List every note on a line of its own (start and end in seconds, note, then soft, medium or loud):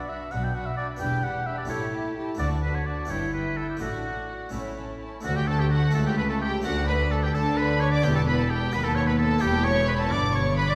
0.00 0.21 B1 medium
0.00 0.21 B2 medium
0.00 0.21 B2 soft
0.00 0.94 B3 soft
0.00 0.95 D4 soft
0.00 0.96 F#4 soft
0.00 0.11 D5 medium
0.08 0.31 D4 soft
0.08 0.30 F#4 soft
0.08 0.33 E5 medium
0.08 0.30 B5 soft
0.31 0.90 B1 medium
0.31 0.89 B2 soft
0.31 0.90 B2 medium
0.31 0.54 D4 medium
0.31 0.53 F#4 soft
0.31 0.46 F#5 medium
0.31 0.54 B5 medium
0.44 0.56 G5 medium
0.54 0.76 D4 soft
0.54 0.75 F#4 soft
0.54 0.68 F#5 medium
0.54 0.76 B5 medium
0.66 0.77 E5 medium
0.76 0.99 D4 soft
0.76 0.99 F#4 soft
0.76 0.88 D5 medium
0.76 0.99 B5 medium
0.96 1.59 E1 medium
0.96 1.58 E2 medium
0.96 1.66 B3 soft
0.96 1.66 D4 soft
0.96 1.67 G4 soft
0.96 1.22 G4 medium
1.01 1.59 E2 soft
1.01 1.22 D4 medium
1.01 1.25 G5 medium
1.01 1.22 B5 medium
1.23 1.46 D4 medium
1.23 1.45 G4 medium
1.23 1.48 F#5 medium
1.23 1.46 B5 soft
1.46 1.69 D4 soft
1.46 1.69 G4 medium
1.46 1.58 E5 medium
1.46 1.69 B5 medium
1.58 1.69 D5 medium
1.65 2.34 A3 soft
1.65 2.36 E4 soft
1.65 2.37 G4 soft
1.69 2.28 A1 medium
1.69 2.28 A2 medium
1.69 1.92 E4 medium
1.69 1.92 G4 medium
1.69 1.92 C#5 medium
1.69 1.92 A5 medium
1.93 2.15 E4 medium
1.93 2.14 G4 medium
1.93 2.15 A5 medium
2.16 2.39 E4 medium
2.16 2.39 G4 medium
2.16 2.38 A5 medium
2.35 3.05 A3 soft
2.35 3.06 D4 soft
2.35 3.07 F#4 soft
2.39 2.98 D2 medium
2.39 2.99 D2 medium
2.39 2.62 D4 medium
2.39 2.61 F#4 medium
2.39 2.50 D5 loud
2.39 2.61 A5 medium
2.63 2.85 D4 medium
2.63 2.85 F#4 medium
2.63 2.77 B4 medium
2.63 2.86 A5 medium
2.75 2.89 C#5 medium
2.86 3.09 D4 soft
2.86 3.09 F#4 medium
2.86 3.12 D5 medium
2.86 3.10 A5 medium
3.05 3.70 G1 medium
3.05 3.77 B3 soft
3.05 3.78 E4 soft
3.05 3.78 G4 soft
3.09 3.70 G2 medium
3.09 3.70 G2 soft
3.09 3.33 E4 medium
3.09 3.33 E4 soft
3.09 3.33 C#5 medium
3.09 3.33 G5 medium
3.34 3.57 E4 medium
3.34 3.59 B4 medium
3.34 3.56 G5 soft
3.57 3.81 E4 soft
3.57 3.69 A4 medium
3.57 3.81 G5 soft
3.70 3.81 G4 medium
3.77 4.42 A1 medium
3.77 4.48 A3 soft
3.77 4.50 D4 soft
3.77 4.51 F#4 soft
3.77 4.04 F#5 medium
3.81 4.42 A2 medium
3.81 4.42 A2 soft
3.81 4.05 D4 medium
3.81 4.52 F#4 medium
3.81 4.05 F#4 medium
4.05 4.29 D4 soft
4.05 4.28 F#4 medium
4.05 4.28 F#5 soft
4.30 4.53 D4 soft
4.30 4.53 F#4 soft
4.30 4.53 F#5 soft
4.49 5.14 A1 medium
4.49 5.14 A2 medium
4.49 5.19 A3 soft
4.49 5.22 C#4 soft
4.49 5.22 E4 soft
4.49 4.76 E4 medium
4.54 5.14 A2 soft
4.54 4.76 C#4 medium
4.54 4.77 A5 soft
4.77 5.00 C#4 soft
4.77 5.00 E4 soft
4.77 5.00 A5 soft
5.01 5.25 C#4 soft
5.01 5.24 E4 medium
5.01 5.24 A5 soft
5.21 5.89 A3 medium
5.21 5.91 D4 medium
5.21 5.92 F#4 medium
5.25 5.91 D2 medium
5.25 5.91 D2 loud
5.25 5.91 D2 medium
5.25 5.91 A3 medium
5.25 5.36 F#4 medium
5.25 5.38 F#4 medium
5.25 5.30 F#5 loud
5.36 5.49 G4 medium
5.36 5.48 G4 medium
5.36 5.49 G5 medium
5.47 5.61 A4 medium
5.47 5.60 A4 medium
5.47 5.60 A5 loud
5.59 5.73 G4 medium
5.59 5.72 G4 medium
5.59 5.65 G5 medium
5.71 5.94 F#4 medium
5.71 5.95 F#4 medium
5.71 5.95 F#5 medium
5.91 6.60 A3 medium
5.91 6.61 E4 medium
5.95 6.64 C#2 medium
5.95 6.61 C#2 medium
5.95 6.64 A3 medium
5.95 6.00 A4 medium
5.95 6.07 A5 loud
6.06 6.17 G4 medium
6.06 6.18 G4 medium
6.06 6.18 G5 medium
6.18 6.29 B4 medium
6.18 6.23 B4 medium
6.18 6.23 B5 loud
6.30 6.41 A4 medium
6.30 6.35 A4 medium
6.30 6.41 A5 medium
6.41 6.52 G4 medium
6.41 6.65 G4 medium
6.41 6.64 G5 loud
6.61 7.33 D2 medium
6.61 7.33 D2 loud
6.61 7.99 A3 medium
6.61 7.99 D4 medium
6.61 7.34 D4 medium
6.61 8.00 F#4 medium
6.61 6.88 F#4 medium
6.61 6.73 F#4 medium
6.61 6.88 F#5 loud
6.66 7.31 D2 medium
6.88 6.96 B4 loud
6.88 7.13 B4 medium
6.88 7.11 B5 loud
7.11 7.16 A4 medium
7.11 7.25 A4 medium
7.11 7.23 A5 medium
7.23 7.28 G4 medium
7.23 7.36 G4 medium
7.23 7.35 G5 loud
7.34 8.03 D2 medium
7.34 8.03 D3 medium
7.34 8.01 D3 medium
7.34 8.03 D4 medium
7.34 7.57 A4 medium
7.34 7.59 A4 medium
7.34 7.57 A5 loud
7.58 7.82 B4 medium
7.58 7.81 B4 medium
7.58 7.82 B5 loud
7.80 7.93 C#5 medium
7.80 7.86 C#5 medium
7.80 7.93 C#6 loud
7.92 8.06 D5 medium
7.92 8.04 D5 medium
7.92 8.04 D6 loud
8.02 8.72 E1 medium
8.02 8.73 E2 medium
8.02 8.70 E2 medium
8.02 8.70 B3 medium
8.02 8.73 B3 medium
8.02 8.71 E4 medium
8.02 8.15 G4 medium
8.02 8.16 G4 medium
8.02 8.16 G5 loud
8.16 8.21 A4 medium
8.16 8.28 A4 medium
8.16 8.28 A5 loud
8.27 8.38 B4 medium
8.27 8.40 B4 medium
8.27 8.39 B5 loud
8.39 8.52 A4 medium
8.39 8.51 A4 medium
8.39 8.51 A5 medium
8.50 8.75 G4 medium
8.50 8.74 G4 medium
8.50 8.74 G5 loud
8.71 9.41 D#2 medium
8.71 9.39 D#2 medium
8.71 9.37 B3 medium
8.71 9.41 B3 medium
8.71 9.40 F#4 medium
8.71 8.86 B4 loud
8.71 8.85 B4 medium
8.71 8.86 B5 loud
8.84 8.97 A4 medium
8.84 8.90 A4 medium
8.84 8.97 A5 medium
8.95 9.09 C#5 medium
8.95 9.01 C#5 medium
8.95 9.02 C#6 loud
9.07 9.18 B4 medium
9.07 9.13 B4 medium
9.07 9.19 B5 medium
9.19 9.43 A4 loud
9.19 9.42 A4 medium
9.19 9.42 A5 loud
9.38 10.74 B3 medium
9.38 10.75 E4 medium
9.38 9.66 G4 loud
9.38 10.75 G4 medium
9.38 9.65 G5 loud
9.43 10.10 E1 loud
9.43 10.10 E2 medium
9.43 10.08 E2 medium
9.43 10.75 B3 medium
9.43 9.65 G4 medium
9.65 9.88 C#5 loud
9.65 9.88 C#6 loud
9.87 10.00 B4 medium
9.87 9.94 B4 medium
9.87 9.99 B5 loud
10.00 10.11 A4 medium
10.00 10.13 A4 loud
10.00 10.12 A5 loud
10.10 10.75 G1 loud
10.10 10.75 G2 loud
10.10 10.75 G2 medium
10.10 10.19 D5 loud
10.10 10.35 D5 loud
10.10 10.34 D6 loud
10.33 10.57 C#5 medium
10.33 10.46 C#5 medium
10.33 10.57 C#6 loud
10.57 10.69 B4 medium
10.57 10.69 B4 loud
10.57 10.69 B5 loud
10.69 10.75 D5 medium
10.69 10.75 D5 loud
10.69 10.75 D6 loud